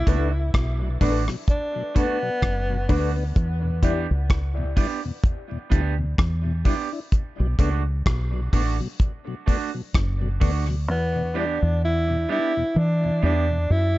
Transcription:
Already playing: E4
0.06 C#2 A3 B3 D4 F#4 A4 B4, kick, closed hi-hat
0.54 B1, kick, cross-stick
0.82 B2 F#3
1.01 A1 A3 B3 D4 F#4 A4 B4, kick, open hi-hat
1.28 B2 F#3, cross-stick
1.48 D4, kick, hi-hat pedal
1.75 B2 F#3
1.95 A3 B3 D4 F#4 A4 B4, kick, closed hi-hat
2.22 B2 F#3
2.42 F#1, kick, cross-stick
2.70 B2 F#3
2.89 D2 A3 B3 D4 F#4 A4 B4, kick, open hi-hat
3.16 B3 D4
3.36 E2, kick, hi-hat pedal
3.63 E2 B2
3.83 G3 B3 D4 E4 G4 D5, kick, closed hi-hat
4.11 C#2
4.30 kick, cross-stick
4.57 E2 B2
4.76 G3 B3 D4 E4 G4, kick, open hi-hat
5.05 E2 B2
5.24 kick, hi-hat pedal
5.51 E2 B2
5.70 D2 G3 B3 D4 E4 G4, kick, closed hi-hat
5.98 E2 B2
6.18 E2, kick, cross-stick
6.45 E2 B2
6.65 G3 B3 D4 E4 G4, kick, open hi-hat
6.92 D4 E4
7.12 kick, hi-hat pedal
7.40 B1 B2 F#3
7.59 C#2 A3 B3 D4 F#4, kick, closed hi-hat
8.06 B1, kick, cross-stick
8.34 B2 F#3
8.53 A1 A3 B3 D4 F#4, kick, open hi-hat
8.80 B2 F#3
9.00 kick, hi-hat pedal
9.27 B2 F#3
9.46 A3 B3 D4 F#4, kick, open hi-hat
9.74 B2 F#3
9.94 F#1, kick, cross-stick, hi-hat pedal
10.22 B2 F#3
10.40 D2 A3 B3 D4 F#4, kick, open hi-hat
10.69 B2 F#3
10.88 E2 B3
11.16 E2 B2
11.34 G3 B3 D4 E4 G4
11.63 E2
11.85 E4
12.10 E2 B2
12.29 G3 B3 D4 E4 G4
12.57 E2 B2
12.76 E3 D4
13.04 E2 B2
13.22 E2 G3 B3 D4 E4 G4
13.51 E2 B2
13.70 F#2 E4

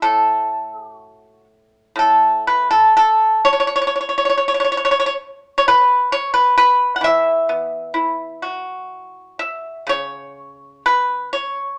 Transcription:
0.02 A2 A4
0.72 G#4
0.84 G4
0.96 F#4
1.96 A2 A4
2.47 B4
2.71 A4
2.97 A4
3.45 C#5
3.53 C#5
3.60 C#5
3.67 C#5
3.76 C#5
3.82 C#5
3.87 C#5
3.96 C#5
4.01 C#5
4.09 C#5
4.18 C#5
4.25 C#5
4.30 C#5
4.38 C#5
4.48 C#5
4.54 C#5
4.60 C#5
4.65 C#5
4.72 C#5
4.77 C#5
4.85 C#5
4.91 C#5
5.00 C#5
5.06 C#5
5.58 C#5
5.68 B4
6.12 C#5
6.34 B4
6.58 B4
6.96 F#5
7.01 E3 E5
7.49 B3
7.94 E4
8.42 F#4
9.39 E5
9.87 C#3 C#5
10.86 B4
11.33 C#5

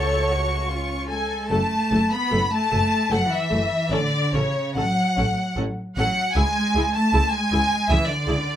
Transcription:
Already playing: C#2 A3 F#4 A4 C#5 C#6
0.30 F#4
0.69 C#4 F4
1.08 G#3 A4 G#5
1.50 F#1 A3 A4 A5
1.91 F#1 A3 A4
2.12 B3 B5
2.30 F#1 A3 A4
2.52 A3 A5
2.71 F#1 A3 A4
3.10 F#1 F#3 A3 A4 F#5
3.32 E3 E5
3.50 F#1 A3 A4
3.90 A1 D3 C#4 A4 D5
4.33 A1 C#3 C#4 A4 C#5
4.75 A1 F#3 C#4 A4 F#5
5.17 A1 C#4 A4
5.57 A1 C#4 A4
5.97 A1 F#3 C#4 A4 F#5
6.35 C#2 G#3 E4 G#4 G#5
6.75 C#2 E4 G#4
6.95 A3 A5
7.13 C#2 E4 G#4
7.33 G#3 G#5
7.51 C#2 E4 G#4
7.89 C#2 E3 E4 G#4 E5
8.08 D3 D5
8.27 C#2 E4 G#4

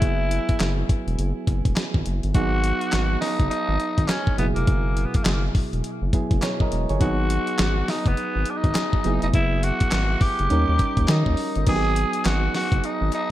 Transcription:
Already playing: F#3 B3 E4 G#4
0.02 F#1, kick, closed hi-hat
0.31 closed hi-hat
0.49 kick, closed hi-hat
0.60 F#1, snare, clap, closed hi-hat
0.89 kick, closed hi-hat
1.07 E1, closed hi-hat
1.19 F#1, closed hi-hat
1.47 F#1, kick, closed hi-hat
1.65 E1, kick, closed hi-hat
1.76 snare, clap, closed hi-hat
1.94 G#1, kick
2.06 F#1, closed hi-hat
2.23 G1, closed hi-hat
2.34 G#1 F#3 B3 D#4 F#4 G#4, kick, closed hi-hat
2.64 closed hi-hat
2.81 closed hi-hat
2.92 G#1, snare, clap, closed hi-hat
3.21 D#4, snare, open hi-hat
3.40 F#1, kick, closed hi-hat
3.50 D#4, closed hi-hat
3.69 G#1
3.80 closed hi-hat
3.98 G#1, kick, closed hi-hat
4.08 C#4, snare, clap, closed hi-hat
4.27 kick
4.38 F#1 B2 F#3 B3 E4 G#4, closed hi-hat
4.55 F1 A#3, closed hi-hat
4.67 F#1, kick, closed hi-hat
4.97 closed hi-hat
5.06 B3
5.14 A#3, kick, closed hi-hat
5.23 F#1 G#3, snare, clap, closed hi-hat
5.33 A#3
5.55 kick, open hi-hat
5.73 E1, closed hi-hat
5.84 closed hi-hat
6.02 F#1
6.13 F#3 B3 E4 G#4, kick, closed hi-hat
6.31 F#1, kick, closed hi-hat
6.42 G#4 C#5, snare, clap, closed hi-hat
6.60 A#4 D#5, kick
6.72 E1, closed hi-hat
6.89 G1 G#4 C#5, closed hi-hat
7.00 G#1 F#3 B3 D#4 F#4 G#4, kick, closed hi-hat
7.30 closed hi-hat
7.47 closed hi-hat
7.59 G#1, snare, clap, closed hi-hat
7.88 D#4, snare, open hi-hat
8.06 F#1 B3, kick, closed hi-hat
8.17 closed hi-hat
8.36 G#1
8.46 closed hi-hat
8.50 D4
8.57 D#4
8.64 G#1, kick, closed hi-hat
8.75 snare, clap, closed hi-hat
8.93 kick
9.04 F#1 F#3 B3 E4 G#4, closed hi-hat
9.22 F1 D#4, closed hi-hat
9.34 F#1 E4, kick, closed hi-hat
9.63 F#4, closed hi-hat
9.80 kick, closed hi-hat
9.92 G#1, snare, clap, closed hi-hat
10.21 G4, kick, open hi-hat
10.39 F#1, closed hi-hat
10.49 D#2 G3 C#4 D#4 A#4, closed hi-hat
10.69 D#2
10.79 kick, clap, closed hi-hat
10.97 D#2, kick, closed hi-hat
11.08 D#3 D#4, snare, clap, closed hi-hat
11.26 D#2, kick
11.37 open hi-hat
11.55 G1, closed hi-hat
11.67 G#1 F#3 B3 D#4 G4 G#4, kick, closed hi-hat, crash
11.76 G#4
11.96 closed hi-hat
12.13 closed hi-hat
12.25 G#1 F#4, snare, clap, closed hi-hat
12.54 F#4, snare, open hi-hat
12.72 F#1, kick, closed hi-hat
12.84 D#4, closed hi-hat
13.01 G#1
13.12 D#4, clap, closed hi-hat

